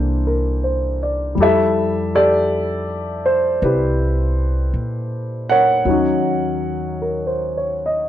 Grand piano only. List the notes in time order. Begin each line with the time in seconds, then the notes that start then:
Already playing: E3 A#3 D4 E4 G4 A4 C5
0.27 A#4
0.64 C5
1.03 D5
1.35 G3
1.40 E4 G4 A4 E5
1.46 G4
2.15 G4 A4 D5
3.26 C5
3.63 E4 G4 B4
5.49 A#4 C#5 F#5
5.85 F#3 C#4 D#4
5.90 F#4
7.02 A#4
7.27 C5
7.57 C#5
7.86 D#5